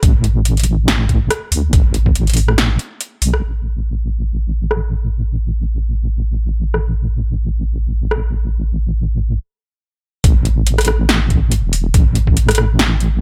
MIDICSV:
0, 0, Header, 1, 3, 480
1, 0, Start_track
1, 0, Tempo, 425532
1, 32, Time_signature, 4, 2, 24, 8
1, 14903, End_track
2, 0, Start_track
2, 0, Title_t, "Wobble bass"
2, 0, Program_c, 0, 39
2, 32, Note_on_c, 0, 33, 99
2, 738, Note_off_c, 0, 33, 0
2, 749, Note_on_c, 0, 33, 98
2, 1457, Note_off_c, 0, 33, 0
2, 1710, Note_on_c, 0, 38, 93
2, 1934, Note_off_c, 0, 38, 0
2, 1951, Note_on_c, 0, 33, 102
2, 3138, Note_off_c, 0, 33, 0
2, 3630, Note_on_c, 0, 35, 100
2, 3853, Note_off_c, 0, 35, 0
2, 3871, Note_on_c, 0, 33, 83
2, 10591, Note_off_c, 0, 33, 0
2, 11550, Note_on_c, 0, 33, 103
2, 12737, Note_off_c, 0, 33, 0
2, 12751, Note_on_c, 0, 33, 98
2, 13107, Note_off_c, 0, 33, 0
2, 13123, Note_on_c, 0, 28, 97
2, 13457, Note_off_c, 0, 28, 0
2, 13471, Note_on_c, 0, 33, 103
2, 13827, Note_off_c, 0, 33, 0
2, 13844, Note_on_c, 0, 33, 98
2, 14898, Note_off_c, 0, 33, 0
2, 14903, End_track
3, 0, Start_track
3, 0, Title_t, "Drums"
3, 31, Note_on_c, 9, 42, 74
3, 32, Note_on_c, 9, 36, 113
3, 144, Note_off_c, 9, 42, 0
3, 145, Note_off_c, 9, 36, 0
3, 270, Note_on_c, 9, 42, 51
3, 383, Note_off_c, 9, 42, 0
3, 512, Note_on_c, 9, 42, 78
3, 624, Note_off_c, 9, 42, 0
3, 645, Note_on_c, 9, 42, 47
3, 672, Note_off_c, 9, 42, 0
3, 672, Note_on_c, 9, 42, 63
3, 717, Note_off_c, 9, 42, 0
3, 717, Note_on_c, 9, 42, 77
3, 829, Note_off_c, 9, 42, 0
3, 992, Note_on_c, 9, 38, 111
3, 992, Note_on_c, 9, 42, 76
3, 1105, Note_off_c, 9, 38, 0
3, 1105, Note_off_c, 9, 42, 0
3, 1232, Note_on_c, 9, 36, 57
3, 1232, Note_on_c, 9, 42, 52
3, 1345, Note_off_c, 9, 36, 0
3, 1345, Note_off_c, 9, 42, 0
3, 1472, Note_on_c, 9, 37, 82
3, 1472, Note_on_c, 9, 42, 80
3, 1585, Note_off_c, 9, 37, 0
3, 1585, Note_off_c, 9, 42, 0
3, 1713, Note_on_c, 9, 46, 96
3, 1826, Note_off_c, 9, 46, 0
3, 1951, Note_on_c, 9, 42, 76
3, 1952, Note_on_c, 9, 36, 113
3, 2064, Note_off_c, 9, 42, 0
3, 2065, Note_off_c, 9, 36, 0
3, 2190, Note_on_c, 9, 42, 55
3, 2303, Note_off_c, 9, 42, 0
3, 2325, Note_on_c, 9, 36, 60
3, 2431, Note_on_c, 9, 42, 80
3, 2438, Note_off_c, 9, 36, 0
3, 2543, Note_off_c, 9, 42, 0
3, 2563, Note_on_c, 9, 42, 51
3, 2590, Note_off_c, 9, 42, 0
3, 2590, Note_on_c, 9, 42, 63
3, 2634, Note_off_c, 9, 42, 0
3, 2634, Note_on_c, 9, 42, 81
3, 2670, Note_on_c, 9, 46, 66
3, 2747, Note_off_c, 9, 42, 0
3, 2783, Note_off_c, 9, 46, 0
3, 2802, Note_on_c, 9, 37, 59
3, 2910, Note_on_c, 9, 38, 115
3, 2910, Note_on_c, 9, 42, 82
3, 2915, Note_off_c, 9, 37, 0
3, 3023, Note_off_c, 9, 38, 0
3, 3023, Note_off_c, 9, 42, 0
3, 3151, Note_on_c, 9, 42, 52
3, 3263, Note_off_c, 9, 42, 0
3, 3391, Note_on_c, 9, 42, 82
3, 3503, Note_off_c, 9, 42, 0
3, 3630, Note_on_c, 9, 46, 95
3, 3743, Note_off_c, 9, 46, 0
3, 3763, Note_on_c, 9, 37, 51
3, 3876, Note_off_c, 9, 37, 0
3, 5311, Note_on_c, 9, 37, 71
3, 5424, Note_off_c, 9, 37, 0
3, 7604, Note_on_c, 9, 37, 48
3, 7717, Note_off_c, 9, 37, 0
3, 9151, Note_on_c, 9, 37, 73
3, 9264, Note_off_c, 9, 37, 0
3, 11551, Note_on_c, 9, 36, 120
3, 11551, Note_on_c, 9, 42, 81
3, 11664, Note_off_c, 9, 36, 0
3, 11664, Note_off_c, 9, 42, 0
3, 11791, Note_on_c, 9, 42, 56
3, 11904, Note_off_c, 9, 42, 0
3, 12031, Note_on_c, 9, 42, 82
3, 12144, Note_off_c, 9, 42, 0
3, 12164, Note_on_c, 9, 37, 74
3, 12164, Note_on_c, 9, 42, 51
3, 12191, Note_off_c, 9, 42, 0
3, 12191, Note_on_c, 9, 42, 70
3, 12235, Note_off_c, 9, 42, 0
3, 12235, Note_on_c, 9, 42, 84
3, 12270, Note_off_c, 9, 37, 0
3, 12270, Note_on_c, 9, 37, 79
3, 12348, Note_off_c, 9, 42, 0
3, 12383, Note_off_c, 9, 37, 0
3, 12509, Note_on_c, 9, 38, 121
3, 12509, Note_on_c, 9, 42, 85
3, 12622, Note_off_c, 9, 38, 0
3, 12622, Note_off_c, 9, 42, 0
3, 12750, Note_on_c, 9, 42, 56
3, 12751, Note_on_c, 9, 36, 61
3, 12863, Note_off_c, 9, 42, 0
3, 12864, Note_off_c, 9, 36, 0
3, 12989, Note_on_c, 9, 42, 82
3, 13102, Note_off_c, 9, 42, 0
3, 13230, Note_on_c, 9, 46, 95
3, 13342, Note_off_c, 9, 46, 0
3, 13470, Note_on_c, 9, 42, 84
3, 13471, Note_on_c, 9, 36, 122
3, 13583, Note_off_c, 9, 42, 0
3, 13584, Note_off_c, 9, 36, 0
3, 13709, Note_on_c, 9, 42, 56
3, 13822, Note_off_c, 9, 42, 0
3, 13844, Note_on_c, 9, 36, 65
3, 13950, Note_on_c, 9, 42, 82
3, 13957, Note_off_c, 9, 36, 0
3, 14063, Note_off_c, 9, 42, 0
3, 14084, Note_on_c, 9, 37, 78
3, 14084, Note_on_c, 9, 42, 51
3, 14110, Note_off_c, 9, 42, 0
3, 14110, Note_on_c, 9, 42, 68
3, 14154, Note_off_c, 9, 42, 0
3, 14154, Note_on_c, 9, 42, 86
3, 14190, Note_off_c, 9, 37, 0
3, 14190, Note_on_c, 9, 37, 75
3, 14267, Note_off_c, 9, 42, 0
3, 14303, Note_off_c, 9, 37, 0
3, 14430, Note_on_c, 9, 38, 125
3, 14430, Note_on_c, 9, 42, 83
3, 14543, Note_off_c, 9, 38, 0
3, 14543, Note_off_c, 9, 42, 0
3, 14669, Note_on_c, 9, 42, 55
3, 14782, Note_off_c, 9, 42, 0
3, 14903, End_track
0, 0, End_of_file